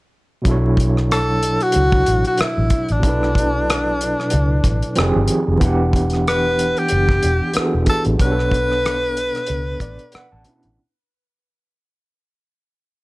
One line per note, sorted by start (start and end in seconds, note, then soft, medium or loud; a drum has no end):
0.42 1.56 B1 medium
0.42 2.98 B2 medium
0.42 2.98 F#3 medium
0.42 2.99 D4 medium
0.42 kick loud
0.42 closed hi-hat medium
0.48 3.00 E4 medium
0.48 3.01 A4 medium
0.48 3.02 C#5 medium
0.77 kick medium
0.77 closed hi-hat medium
0.97 cross-stick soft
1.11 1.64 A4 medium
1.11 cross-stick medium
1.11 closed hi-hat medium
1.43 closed hi-hat medium
1.60 2.26 F#4 medium
1.60 closed hi-hat soft
1.72 2.04 C#2 medium
1.72 closed hi-hat medium
1.92 kick medium
2.06 2.23 A1 medium
2.06 closed hi-hat medium
2.25 2.42 F#4 medium
2.25 closed hi-hat soft
2.38 2.94 E4 medium
2.38 muted fingered electric bass stroke soft
2.38 cross-stick loud
2.38 closed hi-hat medium
2.58 2.70 A1 medium
2.70 kick medium
2.70 closed hi-hat medium
2.88 3.02 A1 medium
2.88 5.31 D4 medium
2.88 closed hi-hat soft
3.00 4.91 B2 medium
3.00 4.92 F#3 soft
3.00 4.93 D4 medium
3.00 kick loud
3.04 4.14 B1 medium
3.04 4.94 E4 soft
3.04 4.95 A4 medium
3.04 closed hi-hat medium
3.09 4.96 B4 medium
3.23 cross-stick soft
3.35 kick medium
3.35 closed hi-hat medium
3.70 cross-stick loud
3.70 closed hi-hat medium
4.01 closed hi-hat medium
4.20 cross-stick soft
4.30 4.62 C#2 medium
4.30 closed hi-hat medium
4.64 4.80 A1 medium
4.64 kick medium
4.64 closed hi-hat medium
4.82 closed hi-hat soft
4.95 5.13 F1 medium
4.95 5.62 D#3 medium
4.95 5.61 F3 medium
4.95 5.61 C4 medium
4.95 5.63 G4 medium
4.95 cross-stick loud
4.95 closed hi-hat medium
5.00 5.63 G#4 medium
5.16 5.28 G1 medium
5.28 closed hi-hat medium
5.48 5.60 F1 medium
5.57 7.49 E3 medium
5.57 7.50 B3 medium
5.57 kick loud
5.57 closed hi-hat medium
5.62 6.72 E1 loud
5.62 7.51 D4 medium
5.62 7.53 F#5 medium
5.67 7.54 G4 medium
5.93 kick medium
5.93 closed hi-hat medium
6.10 cross-stick soft
6.10 closed hi-hat soft
6.27 6.80 B4 medium
6.27 cross-stick loud
6.27 closed hi-hat medium
6.59 closed hi-hat medium
6.77 7.56 G4 medium
6.77 closed hi-hat soft
6.88 7.20 F#1 medium
6.88 closed hi-hat medium
7.09 kick medium
7.09 cross-stick soft
7.23 7.39 E1 medium
7.23 closed hi-hat medium
7.54 8.19 E3 medium
7.54 8.17 B3 soft
7.54 8.20 D4 soft
7.54 muted fingered electric bass stroke soft
7.54 cross-stick loud
7.54 closed hi-hat medium
7.58 8.21 F#4 soft
7.58 7.64 G#4 medium
7.65 8.25 A4 medium
7.74 7.86 E1 medium
7.86 8.03 A4 medium
7.86 kick medium
7.86 closed hi-hat medium
8.04 8.19 A1 medium
8.04 closed hi-hat soft
8.16 10.39 B2 medium
8.16 10.41 B3 medium
8.16 kick loud
8.16 closed hi-hat medium
8.20 9.30 B1 medium
8.20 10.43 D4 medium
8.20 10.42 B4 loud
8.20 10.42 C#5 medium
8.25 8.30 G4 soft
8.32 10.47 A4 medium
8.39 cross-stick soft
8.51 kick medium
8.51 closed hi-hat medium
8.71 cross-stick soft
8.86 cross-stick loud
8.86 closed hi-hat medium
9.17 closed hi-hat medium
9.35 cross-stick soft
9.35 closed hi-hat soft
9.47 9.78 C#2 medium
9.47 closed hi-hat medium
9.80 9.97 A1 medium
9.80 10.11 D5 medium
9.80 kick medium
9.80 closed hi-hat medium
9.99 closed hi-hat soft
10.12 10.30 F#5 medium
10.12 muted fingered electric bass stroke soft
10.12 cross-stick medium
10.12 closed hi-hat medium
10.32 10.45 A1 medium
10.32 10.75 A5 medium
10.44 10.77 B2 medium
10.44 10.78 B3 medium
10.44 10.78 C#4 medium
10.44 10.79 D4 soft
10.44 closed hi-hat medium
10.49 10.79 E4 medium
10.63 10.77 A1 medium
10.63 closed hi-hat soft